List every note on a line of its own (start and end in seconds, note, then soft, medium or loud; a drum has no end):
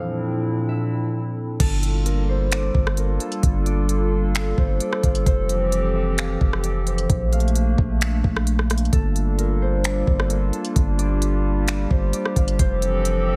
0.00 1.58 A#2 medium
0.00 1.56 F3 medium
0.00 1.58 C4 medium
0.00 1.58 D4 medium
0.00 1.58 E4 medium
0.00 1.56 A4 medium
0.00 1.51 C5 medium
0.00 1.16 D5 medium
0.00 0.75 F5 medium
0.69 2.41 E5 loud
1.60 2.70 G1 loud
1.60 5.23 G3 medium
1.60 5.23 A#3 medium
1.60 5.23 D4 medium
1.60 5.23 F4 medium
1.60 2.12 A4 loud
1.60 7.06 A4 medium
1.60 kick loud
1.60 closed hi-hat medium
1.60 crash loud
1.83 closed hi-hat medium
2.06 2.97 A#4 medium
2.06 closed hi-hat medium
2.29 4.27 C5 medium
2.51 3.65 D5 medium
2.51 finger snap loud
2.51 closed hi-hat medium
2.75 3.19 G1 loud
2.75 kick loud
2.87 cross-stick loud
2.97 3.26 A#4 medium
2.97 closed hi-hat medium
3.20 5.40 A4 medium
3.20 closed hi-hat medium
3.32 closed hi-hat medium
3.43 4.54 G1 loud
3.43 kick loud
3.43 closed hi-hat medium
3.66 4.80 D5 medium
3.66 closed hi-hat medium
3.89 closed hi-hat medium
4.35 finger snap loud
4.35 closed hi-hat medium
4.58 4.80 G1 loud
4.58 5.26 C5 medium
4.58 kick loud
4.80 5.72 D5 medium
4.80 closed hi-hat medium
4.93 cross-stick loud
5.03 5.25 G1 loud
5.03 6.01 F5 medium
5.03 kick loud
5.03 closed hi-hat medium
5.15 closed hi-hat medium
5.26 6.37 F1 loud
5.26 7.08 E3 medium
5.26 7.08 F3 medium
5.26 7.08 C4 medium
5.26 7.08 G4 medium
5.26 6.86 C5 loud
5.26 kick loud
5.26 closed hi-hat medium
5.49 closed hi-hat medium
5.72 6.64 D5 medium
5.72 closed hi-hat medium
5.95 6.24 E5 medium
6.18 7.32 F5 medium
6.18 finger snap loud
6.18 closed hi-hat medium
6.41 7.07 F1 loud
6.41 kick loud
6.53 cross-stick medium
6.64 8.49 D5 medium
6.64 closed hi-hat medium
6.86 8.84 C5 medium
6.86 closed hi-hat medium
6.98 closed hi-hat medium
7.10 7.76 A#1 loud
7.10 8.91 A3 medium
7.10 8.91 A#3 medium
7.10 12.55 D4 loud
7.10 kick loud
7.10 closed hi-hat medium
7.33 8.08 F5 medium
7.33 closed hi-hat medium
7.40 closed hi-hat soft
7.48 closed hi-hat soft
7.55 closed hi-hat medium
7.78 8.22 A#1 loud
7.78 kick loud
8.01 9.74 E5 loud
8.01 finger snap loud
8.01 closed hi-hat medium
8.24 8.90 A#1 loud
8.24 kick loud
8.37 cross-stick medium
8.47 closed hi-hat medium
8.59 cross-stick medium
8.70 cross-stick medium
8.70 closed hi-hat medium
8.78 closed hi-hat medium
8.85 closed hi-hat soft
8.93 10.03 G1 loud
8.93 12.56 G3 medium
8.93 12.56 A#3 medium
8.93 12.56 F4 medium
8.93 10.74 A4 medium
8.93 9.44 A4 loud
8.93 kick loud
8.93 closed hi-hat medium
9.16 closed hi-hat medium
9.38 10.30 A#4 loud
9.38 closed hi-hat medium
9.62 11.60 C5 medium
9.84 10.98 D5 medium
9.84 finger snap loud
9.84 closed hi-hat medium
10.07 10.51 G1 loud
10.07 kick loud
10.20 cross-stick loud
10.30 10.59 A#4 medium
10.30 closed hi-hat medium
10.53 12.73 A4 medium
10.53 closed hi-hat medium
10.65 closed hi-hat medium
10.76 11.87 G1 loud
10.76 13.36 G4 medium
10.76 kick loud
10.76 closed hi-hat medium
10.99 12.13 D5 medium
10.99 closed hi-hat medium
11.22 closed hi-hat medium
11.68 finger snap loud
11.68 closed hi-hat medium
11.91 12.13 G1 loud
11.91 12.59 C5 medium
11.91 kick loud
12.13 13.05 D5 medium
12.13 closed hi-hat medium
12.25 cross-stick medium
12.36 12.58 G1 loud
12.36 13.34 F5 medium
12.36 kick loud
12.36 closed hi-hat medium
12.48 closed hi-hat medium
12.59 13.36 F1 loud
12.59 13.36 E3 medium
12.59 13.36 F3 medium
12.59 13.36 C4 medium
12.59 13.36 A4 medium
12.59 13.36 C5 loud
12.59 kick loud
12.59 closed hi-hat medium
12.82 closed hi-hat medium
13.05 13.36 D5 medium
13.05 closed hi-hat medium
13.28 13.36 E5 medium